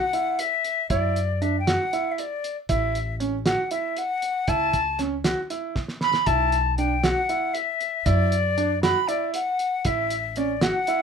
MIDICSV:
0, 0, Header, 1, 5, 480
1, 0, Start_track
1, 0, Tempo, 511509
1, 846, Time_signature, 7, 3, 24, 8
1, 10341, End_track
2, 0, Start_track
2, 0, Title_t, "Flute"
2, 0, Program_c, 0, 73
2, 0, Note_on_c, 0, 78, 90
2, 368, Note_on_c, 0, 76, 86
2, 382, Note_off_c, 0, 78, 0
2, 838, Note_off_c, 0, 76, 0
2, 844, Note_on_c, 0, 74, 74
2, 1329, Note_on_c, 0, 76, 70
2, 1343, Note_off_c, 0, 74, 0
2, 1492, Note_off_c, 0, 76, 0
2, 1497, Note_on_c, 0, 79, 65
2, 1568, Note_on_c, 0, 78, 85
2, 1582, Note_off_c, 0, 79, 0
2, 1984, Note_on_c, 0, 76, 52
2, 1998, Note_off_c, 0, 78, 0
2, 2058, Note_on_c, 0, 74, 70
2, 2072, Note_off_c, 0, 76, 0
2, 2412, Note_off_c, 0, 74, 0
2, 2529, Note_on_c, 0, 76, 72
2, 2960, Note_off_c, 0, 76, 0
2, 3255, Note_on_c, 0, 78, 75
2, 3474, Note_off_c, 0, 78, 0
2, 3495, Note_on_c, 0, 76, 76
2, 3735, Note_on_c, 0, 78, 85
2, 3749, Note_off_c, 0, 76, 0
2, 4210, Note_on_c, 0, 81, 86
2, 4224, Note_off_c, 0, 78, 0
2, 4688, Note_off_c, 0, 81, 0
2, 5645, Note_on_c, 0, 83, 94
2, 5878, Note_on_c, 0, 81, 88
2, 5892, Note_off_c, 0, 83, 0
2, 6355, Note_off_c, 0, 81, 0
2, 6360, Note_on_c, 0, 79, 76
2, 6604, Note_on_c, 0, 78, 83
2, 6618, Note_off_c, 0, 79, 0
2, 7072, Note_on_c, 0, 76, 85
2, 7086, Note_off_c, 0, 78, 0
2, 7560, Note_on_c, 0, 74, 88
2, 7574, Note_off_c, 0, 76, 0
2, 8277, Note_off_c, 0, 74, 0
2, 8283, Note_on_c, 0, 83, 89
2, 8519, Note_on_c, 0, 74, 79
2, 8534, Note_off_c, 0, 83, 0
2, 8758, Note_off_c, 0, 74, 0
2, 8764, Note_on_c, 0, 78, 90
2, 9253, Note_on_c, 0, 76, 80
2, 9267, Note_off_c, 0, 78, 0
2, 9736, Note_on_c, 0, 74, 70
2, 9750, Note_off_c, 0, 76, 0
2, 9973, Note_on_c, 0, 78, 87
2, 9987, Note_off_c, 0, 74, 0
2, 10341, Note_off_c, 0, 78, 0
2, 10341, End_track
3, 0, Start_track
3, 0, Title_t, "Grand piano"
3, 0, Program_c, 1, 0
3, 125, Note_on_c, 1, 64, 60
3, 382, Note_off_c, 1, 64, 0
3, 848, Note_on_c, 1, 64, 80
3, 1104, Note_off_c, 1, 64, 0
3, 1330, Note_on_c, 1, 62, 64
3, 1457, Note_off_c, 1, 62, 0
3, 1569, Note_on_c, 1, 66, 75
3, 1697, Note_off_c, 1, 66, 0
3, 1812, Note_on_c, 1, 64, 69
3, 2067, Note_off_c, 1, 64, 0
3, 2526, Note_on_c, 1, 64, 81
3, 2783, Note_off_c, 1, 64, 0
3, 3003, Note_on_c, 1, 61, 63
3, 3132, Note_off_c, 1, 61, 0
3, 3247, Note_on_c, 1, 66, 70
3, 3375, Note_off_c, 1, 66, 0
3, 3484, Note_on_c, 1, 64, 68
3, 3741, Note_off_c, 1, 64, 0
3, 4205, Note_on_c, 1, 64, 81
3, 4462, Note_off_c, 1, 64, 0
3, 4681, Note_on_c, 1, 61, 66
3, 4811, Note_off_c, 1, 61, 0
3, 4923, Note_on_c, 1, 66, 72
3, 5052, Note_off_c, 1, 66, 0
3, 5164, Note_on_c, 1, 64, 66
3, 5421, Note_off_c, 1, 64, 0
3, 5884, Note_on_c, 1, 64, 78
3, 6141, Note_off_c, 1, 64, 0
3, 6365, Note_on_c, 1, 62, 61
3, 6494, Note_off_c, 1, 62, 0
3, 6606, Note_on_c, 1, 66, 69
3, 6735, Note_off_c, 1, 66, 0
3, 6844, Note_on_c, 1, 64, 64
3, 7101, Note_off_c, 1, 64, 0
3, 7566, Note_on_c, 1, 64, 85
3, 7823, Note_off_c, 1, 64, 0
3, 8048, Note_on_c, 1, 62, 64
3, 8176, Note_off_c, 1, 62, 0
3, 8287, Note_on_c, 1, 66, 81
3, 8415, Note_off_c, 1, 66, 0
3, 8525, Note_on_c, 1, 64, 69
3, 8782, Note_off_c, 1, 64, 0
3, 9253, Note_on_c, 1, 64, 82
3, 9507, Note_off_c, 1, 64, 0
3, 9732, Note_on_c, 1, 61, 68
3, 9858, Note_off_c, 1, 61, 0
3, 9968, Note_on_c, 1, 66, 70
3, 10095, Note_off_c, 1, 66, 0
3, 10210, Note_on_c, 1, 64, 75
3, 10341, Note_off_c, 1, 64, 0
3, 10341, End_track
4, 0, Start_track
4, 0, Title_t, "Upright bass"
4, 0, Program_c, 2, 32
4, 846, Note_on_c, 2, 42, 82
4, 1646, Note_off_c, 2, 42, 0
4, 2528, Note_on_c, 2, 33, 81
4, 3327, Note_off_c, 2, 33, 0
4, 4202, Note_on_c, 2, 37, 78
4, 5003, Note_off_c, 2, 37, 0
4, 5883, Note_on_c, 2, 35, 75
4, 6684, Note_off_c, 2, 35, 0
4, 7564, Note_on_c, 2, 42, 87
4, 8364, Note_off_c, 2, 42, 0
4, 9244, Note_on_c, 2, 33, 73
4, 10044, Note_off_c, 2, 33, 0
4, 10341, End_track
5, 0, Start_track
5, 0, Title_t, "Drums"
5, 124, Note_on_c, 9, 42, 55
5, 218, Note_off_c, 9, 42, 0
5, 364, Note_on_c, 9, 42, 75
5, 458, Note_off_c, 9, 42, 0
5, 605, Note_on_c, 9, 42, 52
5, 699, Note_off_c, 9, 42, 0
5, 845, Note_on_c, 9, 42, 67
5, 846, Note_on_c, 9, 36, 86
5, 939, Note_off_c, 9, 42, 0
5, 940, Note_off_c, 9, 36, 0
5, 1091, Note_on_c, 9, 42, 57
5, 1185, Note_off_c, 9, 42, 0
5, 1331, Note_on_c, 9, 42, 48
5, 1425, Note_off_c, 9, 42, 0
5, 1571, Note_on_c, 9, 38, 88
5, 1571, Note_on_c, 9, 42, 64
5, 1665, Note_off_c, 9, 38, 0
5, 1665, Note_off_c, 9, 42, 0
5, 1811, Note_on_c, 9, 42, 52
5, 1905, Note_off_c, 9, 42, 0
5, 2049, Note_on_c, 9, 42, 66
5, 2143, Note_off_c, 9, 42, 0
5, 2291, Note_on_c, 9, 42, 49
5, 2385, Note_off_c, 9, 42, 0
5, 2524, Note_on_c, 9, 42, 66
5, 2527, Note_on_c, 9, 36, 90
5, 2618, Note_off_c, 9, 42, 0
5, 2621, Note_off_c, 9, 36, 0
5, 2770, Note_on_c, 9, 42, 54
5, 2864, Note_off_c, 9, 42, 0
5, 3007, Note_on_c, 9, 42, 46
5, 3101, Note_off_c, 9, 42, 0
5, 3243, Note_on_c, 9, 38, 87
5, 3243, Note_on_c, 9, 42, 59
5, 3337, Note_off_c, 9, 38, 0
5, 3337, Note_off_c, 9, 42, 0
5, 3480, Note_on_c, 9, 42, 54
5, 3574, Note_off_c, 9, 42, 0
5, 3721, Note_on_c, 9, 42, 63
5, 3815, Note_off_c, 9, 42, 0
5, 3962, Note_on_c, 9, 42, 56
5, 4056, Note_off_c, 9, 42, 0
5, 4200, Note_on_c, 9, 42, 72
5, 4204, Note_on_c, 9, 36, 96
5, 4293, Note_off_c, 9, 42, 0
5, 4297, Note_off_c, 9, 36, 0
5, 4442, Note_on_c, 9, 42, 60
5, 4444, Note_on_c, 9, 36, 67
5, 4536, Note_off_c, 9, 42, 0
5, 4538, Note_off_c, 9, 36, 0
5, 4681, Note_on_c, 9, 38, 29
5, 4681, Note_on_c, 9, 42, 51
5, 4775, Note_off_c, 9, 38, 0
5, 4775, Note_off_c, 9, 42, 0
5, 4921, Note_on_c, 9, 38, 92
5, 4921, Note_on_c, 9, 42, 70
5, 5015, Note_off_c, 9, 38, 0
5, 5015, Note_off_c, 9, 42, 0
5, 5164, Note_on_c, 9, 42, 58
5, 5258, Note_off_c, 9, 42, 0
5, 5400, Note_on_c, 9, 38, 48
5, 5403, Note_on_c, 9, 36, 92
5, 5494, Note_off_c, 9, 38, 0
5, 5497, Note_off_c, 9, 36, 0
5, 5522, Note_on_c, 9, 38, 45
5, 5616, Note_off_c, 9, 38, 0
5, 5638, Note_on_c, 9, 38, 62
5, 5732, Note_off_c, 9, 38, 0
5, 5758, Note_on_c, 9, 38, 66
5, 5852, Note_off_c, 9, 38, 0
5, 5879, Note_on_c, 9, 42, 74
5, 5883, Note_on_c, 9, 36, 90
5, 5972, Note_off_c, 9, 42, 0
5, 5976, Note_off_c, 9, 36, 0
5, 6121, Note_on_c, 9, 42, 52
5, 6215, Note_off_c, 9, 42, 0
5, 6363, Note_on_c, 9, 42, 46
5, 6456, Note_off_c, 9, 42, 0
5, 6602, Note_on_c, 9, 38, 89
5, 6602, Note_on_c, 9, 42, 59
5, 6696, Note_off_c, 9, 38, 0
5, 6696, Note_off_c, 9, 42, 0
5, 6842, Note_on_c, 9, 42, 50
5, 6936, Note_off_c, 9, 42, 0
5, 7081, Note_on_c, 9, 42, 62
5, 7175, Note_off_c, 9, 42, 0
5, 7324, Note_on_c, 9, 42, 46
5, 7418, Note_off_c, 9, 42, 0
5, 7563, Note_on_c, 9, 42, 69
5, 7565, Note_on_c, 9, 36, 93
5, 7657, Note_off_c, 9, 42, 0
5, 7659, Note_off_c, 9, 36, 0
5, 7807, Note_on_c, 9, 42, 59
5, 7901, Note_off_c, 9, 42, 0
5, 8048, Note_on_c, 9, 42, 49
5, 8142, Note_off_c, 9, 42, 0
5, 8288, Note_on_c, 9, 38, 80
5, 8288, Note_on_c, 9, 42, 64
5, 8382, Note_off_c, 9, 38, 0
5, 8382, Note_off_c, 9, 42, 0
5, 8526, Note_on_c, 9, 42, 60
5, 8620, Note_off_c, 9, 42, 0
5, 8762, Note_on_c, 9, 42, 77
5, 8856, Note_off_c, 9, 42, 0
5, 9001, Note_on_c, 9, 42, 51
5, 9095, Note_off_c, 9, 42, 0
5, 9239, Note_on_c, 9, 42, 76
5, 9245, Note_on_c, 9, 36, 94
5, 9333, Note_off_c, 9, 42, 0
5, 9338, Note_off_c, 9, 36, 0
5, 9482, Note_on_c, 9, 42, 59
5, 9576, Note_off_c, 9, 42, 0
5, 9719, Note_on_c, 9, 42, 53
5, 9813, Note_off_c, 9, 42, 0
5, 9960, Note_on_c, 9, 38, 89
5, 9960, Note_on_c, 9, 42, 62
5, 10054, Note_off_c, 9, 38, 0
5, 10054, Note_off_c, 9, 42, 0
5, 10202, Note_on_c, 9, 42, 52
5, 10296, Note_off_c, 9, 42, 0
5, 10341, End_track
0, 0, End_of_file